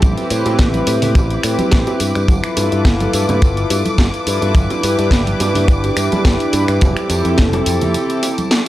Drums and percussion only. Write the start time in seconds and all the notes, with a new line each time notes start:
0.02 kick, closed hi-hat, tambourine, high conga
0.18 closed hi-hat, tambourine, high bongo
0.30 open hi-hat, tambourine
0.45 closed hi-hat, tambourine, high bongo
0.58 kick, snare, closed hi-hat, tambourine, low conga
0.74 closed hi-hat, tambourine, high conga
0.87 open hi-hat, tambourine, high bongo
1.02 open hi-hat, tambourine, low conga
1.15 kick, closed hi-hat, tambourine, high bongo
1.31 closed hi-hat, tambourine
1.43 finger snap, open hi-hat, tambourine
1.59 closed hi-hat, tambourine, high bongo, high conga
1.72 kick, snare, closed hi-hat, tambourine
1.87 closed hi-hat, tambourine, high bongo
2.00 open hi-hat, tambourine
2.15 finger snap, closed hi-hat, tambourine
2.28 kick, closed hi-hat, tambourine, high bongo, high conga
2.44 finger snap, closed hi-hat, tambourine
2.57 open hi-hat, tambourine, high bongo
2.72 closed hi-hat, tambourine
2.85 kick, snare, closed hi-hat, tambourine, low conga
3.00 closed hi-hat, tambourine, high bongo, high conga
3.13 open hi-hat, tambourine
3.29 closed hi-hat, tambourine, high bongo, low conga
3.42 kick, closed hi-hat, tambourine
3.57 closed hi-hat, tambourine
3.70 open hi-hat, tambourine, high bongo
3.85 closed hi-hat, tambourine, high conga
3.98 kick, snare, closed hi-hat, tambourine, high bongo
4.14 closed hi-hat, tambourine
4.27 open hi-hat, tambourine
4.41 closed hi-hat, tambourine, high bongo
4.55 kick, closed hi-hat, tambourine, high conga
4.70 closed hi-hat, tambourine, high bongo
4.83 open hi-hat, tambourine
4.99 closed hi-hat, tambourine
5.11 kick, snare, closed hi-hat, tambourine, high bongo, low conga
5.27 closed hi-hat, tambourine, high conga
5.40 open hi-hat, tambourine, high bongo
5.55 open hi-hat, tambourine, low conga
5.68 kick, closed hi-hat, tambourine
5.84 closed hi-hat, tambourine, high bongo
5.97 finger snap, open hi-hat, tambourine
6.12 closed hi-hat, tambourine, high bongo, high conga
6.25 kick, snare, closed hi-hat, tambourine
6.40 closed hi-hat, tambourine
6.53 open hi-hat, tambourine, high bongo
6.68 finger snap, closed hi-hat, tambourine
6.81 kick, closed hi-hat, tambourine, high bongo, high conga
6.97 finger snap, closed hi-hat, tambourine
7.10 open hi-hat, tambourine
7.25 closed hi-hat, tambourine, high bongo
7.38 kick, snare, closed hi-hat, tambourine, low conga
7.53 closed hi-hat, tambourine, high bongo, high conga
7.66 open hi-hat, tambourine
7.81 closed hi-hat, tambourine, low conga
7.94 closed hi-hat, tambourine, high bongo
8.10 closed hi-hat, tambourine
8.23 open hi-hat, tambourine, high bongo
8.38 closed hi-hat, tambourine, high conga
8.51 snare, open hi-hat, tambourine